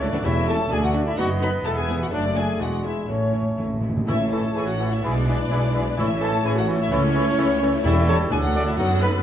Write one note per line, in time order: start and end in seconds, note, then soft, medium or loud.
0.00 0.06 C#2 loud
0.00 0.06 E3 loud
0.00 0.21 A3 medium
0.00 0.24 A3 medium
0.00 0.06 A3 loud
0.00 0.24 C#4 medium
0.00 0.06 C#4 loud
0.00 0.27 D4 loud
0.00 0.06 E4 loud
0.00 0.23 C#5 medium
0.00 0.22 D5 medium
0.00 0.25 D5 loud
0.12 0.17 C#2 medium
0.12 0.17 E3 medium
0.12 0.17 A3 loud
0.12 0.18 B3 medium
0.12 0.17 D4 medium
0.23 0.66 E1 loud
0.23 0.66 E2 loud
0.23 0.68 E2 loud
0.23 0.32 E3 loud
0.23 0.32 A3 loud
0.23 1.19 A3 medium
0.23 0.32 C#4 medium
0.23 0.48 E4 loud
0.23 0.31 G4 medium
0.23 0.72 C#5 medium
0.23 0.46 E5 loud
0.23 0.48 E5 loud
0.46 0.56 E3 medium
0.46 0.57 A3 medium
0.46 0.57 A3 loud
0.46 0.54 C#4 medium
0.46 0.57 C#4 medium
0.46 0.55 G4 medium
0.46 0.74 A4 loud
0.46 0.71 A5 loud
0.46 0.55 A5 loud
0.70 1.12 D2 medium
0.70 1.12 D2 loud
0.70 0.79 A3 medium
0.70 0.78 D4 medium
0.70 0.78 F#4 medium
0.70 0.83 G#4 loud
0.70 1.20 D5 medium
0.70 0.77 G#5 loud
0.70 0.83 G#5 loud
0.84 1.06 F#4 loud
0.84 0.92 F#5 loud
0.84 0.90 F#5 loud
0.93 1.02 A3 medium
0.93 1.04 A3 medium
0.93 1.01 D4 medium
0.93 1.03 D4 medium
0.93 1.01 F#4 medium
1.07 1.12 E4 medium
1.07 1.18 E5 loud
1.07 1.13 E5 medium
1.16 1.60 F#1 medium
1.16 1.59 F#2 loud
1.16 1.26 A3 medium
1.16 2.12 B3 medium
1.16 1.26 B3 medium
1.16 1.24 D#4 medium
1.16 1.24 F#4 medium
1.16 1.30 F#4 loud
1.16 1.68 D#5 loud
1.16 1.25 F#5 loud
1.39 1.48 A3 medium
1.39 1.49 B3 medium
1.39 1.50 B3 loud
1.39 1.47 D#4 medium
1.39 1.50 D#4 medium
1.39 1.47 F#4 medium
1.39 1.65 B4 loud
1.39 1.50 B5 loud
1.39 1.49 B5 loud
1.63 2.07 E1 loud
1.63 2.06 E2 medium
1.63 1.72 G#3 medium
1.63 1.72 B3 medium
1.63 1.71 E4 medium
1.63 1.71 G#4 medium
1.63 1.79 A4 loud
1.63 2.12 E5 medium
1.63 1.70 A5 loud
1.63 1.71 A5 loud
1.78 2.01 G#4 medium
1.78 2.00 G#5 loud
1.78 1.84 G#5 loud
1.87 1.96 G#3 medium
1.87 1.96 B3 medium
1.87 1.98 B3 loud
1.87 1.95 E4 medium
1.87 1.98 E4 medium
1.87 1.95 G#4 medium
2.01 2.07 F#4 medium
2.01 2.07 F#5 medium
2.01 2.06 F#5 loud
2.10 2.55 F#1 loud
2.10 2.55 F#2 loud
2.10 2.20 F#3 medium
2.10 2.62 A3 medium
2.10 2.20 A3 medium
2.10 2.18 D4 medium
2.10 2.18 A4 medium
2.10 2.80 D5 medium
2.10 2.38 D5 loud
2.10 2.36 D5 loud
2.14 2.59 A3 medium
2.14 2.24 D4 loud
2.14 2.59 D4 medium
2.34 2.44 F#3 medium
2.34 2.44 A3 medium
2.34 2.43 D4 medium
2.34 2.63 G#4 medium
2.34 2.42 A4 medium
2.34 2.60 G#5 medium
2.34 2.61 G#5 loud
2.59 3.04 E1 medium
2.59 3.04 E2 medium
2.59 2.67 G#3 medium
2.59 3.08 G#3 medium
2.59 3.10 G#3 medium
2.59 2.67 B3 medium
2.59 2.67 D4 medium
2.59 3.09 D4 medium
2.59 2.67 E4 medium
2.59 2.88 F#4 medium
2.59 2.66 F#5 medium
2.59 2.86 F#5 medium
2.82 2.93 G#3 medium
2.82 2.93 B3 medium
2.82 2.90 D4 medium
2.82 2.91 E4 medium
2.82 2.91 E5 medium
2.82 3.10 E5 medium
2.87 3.11 E4 medium
3.07 3.53 A1 medium
3.07 3.16 A2 soft
3.07 3.54 A2 medium
3.07 3.16 E3 medium
3.07 3.16 A3 medium
3.07 3.82 A3 medium
3.07 3.85 A3 medium
3.07 3.15 C#4 soft
3.07 3.85 C#4 medium
3.07 3.15 E4 medium
3.07 3.59 C#5 medium
3.11 3.59 C#4 medium
3.11 3.81 C#5 medium
3.17 3.25 A2 soft
3.26 3.32 A2 soft
3.33 3.41 A2 soft
3.33 3.42 E3 soft
3.33 3.42 A3 medium
3.33 3.41 C#4 medium
3.33 3.41 E4 medium
3.42 3.49 A2 medium
3.50 3.56 A2 medium
3.58 4.03 A1 medium
3.58 3.64 A2 medium
3.58 4.03 A2 medium
3.58 3.67 E3 medium
3.58 3.68 A3 soft
3.58 3.66 C#4 medium
3.58 3.66 E4 medium
3.66 3.72 A2 medium
3.73 3.79 A2 medium
3.80 3.88 A2 medium
3.80 3.91 E3 soft
3.80 3.91 A3 soft
3.80 3.90 C#4 soft
3.80 3.91 E4 soft
3.89 3.95 A2 medium
3.97 4.03 A2 loud
4.07 4.50 A1 medium
4.07 4.50 A2 loud
4.07 4.76 A2 loud
4.07 4.19 E3 medium
4.07 4.19 A3 medium
4.07 4.99 A3 medium
4.07 4.19 E4 medium
4.07 4.15 E4 loud
4.07 4.99 E4 medium
4.07 4.20 E4 medium
4.07 4.19 A4 medium
4.07 5.00 C#5 medium
4.07 4.31 E5 loud
4.07 4.14 C#6 medium
4.20 4.32 C#4 medium
4.20 4.32 A4 medium
4.31 4.43 E3 medium
4.31 4.44 A3 medium
4.31 4.44 E4 medium
4.31 4.43 E4 medium
4.31 4.55 A4 medium
4.31 4.43 A4 medium
4.31 4.55 A5 medium
4.31 4.39 C#6 medium
4.42 4.55 C#4 medium
4.42 4.55 A4 medium
4.54 4.98 A1 medium
4.54 4.97 A2 medium
4.54 4.66 E3 medium
4.54 4.66 A3 medium
4.54 4.66 E4 medium
4.54 4.67 E4 medium
4.54 4.67 G#4 medium
4.54 4.68 A4 medium
4.54 4.68 G#5 loud
4.54 4.63 C#6 medium
4.66 4.79 C#4 medium
4.66 4.91 F#4 medium
4.66 4.79 A4 medium
4.66 4.92 F#5 loud
4.78 4.90 E3 medium
4.78 4.91 A3 medium
4.78 4.91 E4 medium
4.78 4.90 E4 medium
4.78 4.87 C#6 medium
4.82 4.92 A4 medium
4.90 5.03 C#4 medium
4.90 5.03 E4 medium
4.90 5.03 A4 medium
4.90 5.04 E5 medium
5.01 5.45 B1 loud
5.01 5.45 B2 loud
5.01 5.15 E3 medium
5.01 5.98 G#3 medium
5.01 5.13 B3 medium
5.01 5.95 D4 loud
5.01 5.13 E4 medium
5.01 5.96 E4 medium
5.01 5.15 E4 medium
5.01 5.97 B4 medium
5.01 5.99 D5 loud
5.01 5.10 B5 medium
5.05 5.15 G#4 medium
5.14 5.27 G#3 medium
5.14 5.27 D4 medium
5.26 5.38 E3 medium
5.26 5.38 B3 medium
5.26 5.38 E4 medium
5.26 5.39 E4 medium
5.26 5.39 G#4 medium
5.26 5.35 B5 medium
5.38 5.51 G#3 medium
5.38 5.50 D4 medium
5.50 5.92 B1 medium
5.50 5.93 B2 medium
5.50 5.62 E3 medium
5.50 5.61 B3 medium
5.50 5.61 E4 medium
5.50 5.62 E4 medium
5.50 5.63 G#4 medium
5.50 5.58 B5 medium
5.62 5.74 G#3 medium
5.62 5.74 D4 medium
5.73 5.85 E3 medium
5.73 5.86 B3 medium
5.73 5.86 E4 medium
5.73 5.86 G#4 medium
5.73 5.82 B5 medium
5.85 5.97 G#3 medium
5.85 5.97 D4 medium
5.97 6.40 A1 loud
5.97 6.39 A2 loud
5.97 6.64 A2 loud
5.97 6.08 E3 medium
5.97 6.92 A3 loud
5.97 6.09 C#4 medium
5.97 6.06 E4 loud
5.97 6.09 E4 medium
5.97 6.90 E4 medium
5.97 6.10 A4 medium
5.97 6.90 C#5 medium
5.97 6.22 E5 loud
5.97 6.05 C#6 medium
6.09 6.21 A3 medium
6.09 6.21 E4 medium
6.21 6.32 E3 medium
6.21 6.34 C#4 medium
6.21 6.33 E4 medium
6.21 6.44 A4 loud
6.21 6.34 A4 medium
6.21 6.45 A5 loud
6.21 6.29 C#6 medium
6.32 6.45 A3 medium
6.32 6.45 E4 medium
6.43 6.86 A1 loud
6.43 6.86 A2 medium
6.43 6.56 E3 medium
6.43 6.55 C#4 medium
6.43 6.56 E4 medium
6.43 6.57 G#4 loud
6.43 6.57 A4 medium
6.43 6.50 G#5 loud
6.43 6.52 C#6 medium
6.55 6.68 A3 medium
6.55 6.68 E4 medium
6.55 6.80 F#4 medium
6.55 6.66 F#5 loud
6.67 6.78 E3 medium
6.67 6.79 C#4 medium
6.67 6.79 E4 medium
6.67 6.80 A4 medium
6.67 6.76 C#6 medium
6.79 6.92 A3 medium
6.79 6.91 E4 loud
6.79 6.92 E4 medium
6.79 6.92 E5 loud
6.91 7.33 C#2 loud
6.91 7.02 E3 loud
6.91 7.84 A3 loud
6.91 7.84 C#4 loud
6.91 7.03 C#4 medium
6.91 7.03 E4 loud
6.91 7.84 E4 loud
6.91 7.03 A4 medium
6.91 7.85 C#5 loud
6.91 7.83 C#5 loud
6.91 6.99 C#6 medium
7.03 7.15 A3 medium
7.03 7.15 E4 medium
7.15 7.26 E3 medium
7.15 7.27 C#4 medium
7.15 7.26 E4 medium
7.15 7.27 A4 medium
7.15 7.21 C#6 medium
7.26 7.38 A3 medium
7.26 7.38 E4 medium
7.37 7.79 C#2 medium
7.37 7.79 C#2 loud
7.37 7.49 E3 medium
7.37 7.48 C#4 medium
7.37 7.49 E4 medium
7.37 7.49 A4 medium
7.37 7.46 C#6 medium
7.50 7.62 A3 medium
7.50 7.62 E4 medium
7.61 7.73 E3 medium
7.61 7.73 C#4 medium
7.61 7.73 E4 medium
7.61 7.73 A4 medium
7.61 7.69 C#6 medium
7.73 7.84 A3 medium
7.73 7.85 E4 medium
7.84 8.26 E1 loud
7.84 8.26 E2 loud
7.84 8.28 E2 loud
7.84 8.33 G3 loud
7.84 7.94 A3 medium
7.84 7.93 C#4 medium
7.84 7.92 E4 loud
7.84 8.32 E4 loud
7.84 8.28 A4 loud
7.84 8.08 E5 loud
7.84 8.33 C#6 medium
8.07 8.16 A3 loud
8.07 8.16 A3 medium
8.07 8.16 C#4 medium
8.07 8.16 G4 loud
8.07 8.15 A4 loud
8.07 8.16 C#5 loud
8.07 8.16 A5 loud
8.31 8.73 D2 loud
8.31 8.78 F#3 medium
8.31 8.39 A3 medium
8.31 8.80 D4 loud
8.31 8.39 D4 medium
8.31 8.36 G#4 loud
8.31 8.78 A4 loud
8.31 8.36 G#5 loud
8.31 8.80 D6 medium
8.42 8.66 F#4 medium
8.42 8.66 F#5 loud
8.54 8.62 A3 medium
8.54 8.63 A3 loud
8.54 8.62 D4 medium
8.54 8.63 F#4 loud
8.54 8.63 D5 medium
8.66 8.78 E4 loud
8.66 8.72 E5 loud
8.77 9.20 F#1 loud
8.77 9.20 F#2 loud
8.77 9.23 F#3 medium
8.77 9.23 B3 loud
8.77 8.86 B3 medium
8.77 8.86 D#4 medium
8.77 9.01 F#4 loud
8.77 9.23 A4 medium
8.77 9.01 F#5 loud
8.77 9.23 D#6 medium
9.01 9.11 A3 medium
9.01 9.10 B3 medium
9.01 9.10 D#4 medium
9.01 9.11 D#4 loud
9.01 9.23 B4 loud
9.01 9.10 B4 loud
9.01 9.23 B5 loud